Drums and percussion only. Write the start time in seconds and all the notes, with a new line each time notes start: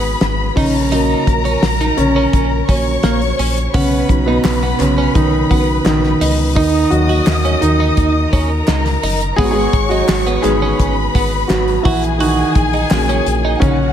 0.21 snare, hi-hat pedal, open hi-hat
0.57 kick, hi-hat pedal, open hi-hat
0.92 hi-hat pedal, open hi-hat
1.27 kick, hi-hat pedal, open hi-hat
1.45 open hi-hat
1.63 snare, hi-hat pedal, open hi-hat
1.80 hi-hat pedal
1.98 hi-hat pedal, open hi-hat
2.33 kick, hi-hat pedal, open hi-hat
2.68 kick, hi-hat pedal, open hi-hat
3.03 snare, hi-hat pedal, open hi-hat
3.22 open hi-hat
3.39 hi-hat pedal, open hi-hat
3.57 hi-hat pedal
3.74 kick, hi-hat pedal, open hi-hat
4.09 kick, hi-hat pedal, open hi-hat
4.45 snare, clap, hi-hat pedal, open hi-hat
4.80 clap, hi-hat pedal, open hi-hat
5.15 kick, hi-hat pedal, open hi-hat
5.51 kick, hi-hat pedal, open hi-hat
5.86 snare, clap, hi-hat pedal, open hi-hat
6.04 snare
6.21 hi-hat pedal, open hi-hat
6.56 kick, hi-hat pedal, open hi-hat
6.91 hi-hat pedal, open hi-hat
7.09 open hi-hat
7.27 snare, clap, hi-hat pedal, open hi-hat
7.45 hi-hat pedal
7.62 hi-hat pedal, open hi-hat
7.97 kick, hi-hat pedal, open hi-hat
8.33 kick, hi-hat pedal, open hi-hat
8.67 snare, clap, hi-hat pedal, open hi-hat
8.86 snare, open hi-hat
9.03 hi-hat pedal, open hi-hat
9.21 hi-hat pedal
9.38 kick, hi-hat pedal, open hi-hat
9.73 kick, hi-hat pedal, open hi-hat
9.91 open hi-hat
10.09 snare, clap, hi-hat pedal, open hi-hat
10.26 hi-hat pedal
10.44 clap, hi-hat pedal, open hi-hat
10.80 kick, hi-hat pedal, open hi-hat
11.15 kick, hi-hat pedal, open hi-hat
11.50 snare, clap, hi-hat pedal, open hi-hat
11.68 open hi-hat
11.85 kick, hi-hat pedal, open hi-hat
12.03 hi-hat pedal
12.20 hi-hat pedal, open hi-hat
12.55 kick, hi-hat pedal, open hi-hat
12.73 open hi-hat
12.91 snare, clap, hi-hat pedal, open hi-hat
13.09 hi-hat pedal
13.26 hi-hat pedal, open hi-hat
13.62 kick, hi-hat pedal, open hi-hat